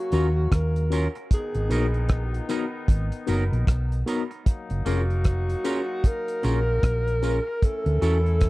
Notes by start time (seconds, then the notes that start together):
Already playing: F#3 A#3 C#4 F#4
0.12 D#2 F#3 C#4 F4 F#4 A#4, closed hi-hat, tambourine
0.52 D#2 A#4, kick, cross-stick, closed hi-hat
0.76 closed hi-hat
0.90 F#3 C#4 F4 F#4 A#4, closed hi-hat, tambourine
1.15 muted clean electric guitar stroke, closed hi-hat
1.31 D#3 B3 D#4 G#4, kick, closed hi-hat
1.55 G#1, closed hi-hat
1.69 A#1 F#3 B3 D#4 F#4 A#4, closed hi-hat, tambourine
1.94 closed hi-hat
2.09 kick, cross-stick, closed hi-hat
2.34 closed hi-hat
2.49 F#3 B3 D#4 F#4 A#4, cross-stick, closed hi-hat, tambourine
2.88 G#1, kick, closed hi-hat
3.12 closed hi-hat
3.26 F#1 F#3 B3 D#4 F#4 A#4, closed hi-hat, tambourine
3.51 A#1 F#4 A#4, closed hi-hat
3.67 B1, kick, cross-stick, closed hi-hat
3.92 closed hi-hat
4.06 F#3 B3 D#4 F#4 A#4, closed hi-hat, tambourine
4.31 muted clean electric guitar stroke, closed hi-hat
4.45 F#3 A#3 D#4, kick, closed hi-hat
4.70 F#1, closed hi-hat
4.86 F1 A#3 C#4 F4 G#4 A#4, closed hi-hat, tambourine
4.90 F#4
5.10 closed hi-hat
5.24 kick, cross-stick, closed hi-hat
5.50 closed hi-hat
5.64 A#3 C#4 F4 G#4 A#4, closed hi-hat, tambourine
6.04 A#4, kick, closed hi-hat
6.28 closed hi-hat
6.43 A#1 A#3 C#4 F4 G#4 A#4, closed hi-hat, tambourine
6.83 A#1, kick, cross-stick, closed hi-hat
7.08 closed hi-hat
7.22 A#3 C#4 F4 G#4 A#4, closed hi-hat, tambourine
7.47 muted clean electric guitar stroke
7.62 A3 C#4 E4 A4, kick, closed hi-hat
7.86 D2, closed hi-hat
8.02 E2 F#3 C#4 E4 F#4 A4, closed hi-hat, tambourine
8.26 closed hi-hat
8.41 kick, cross-stick, closed hi-hat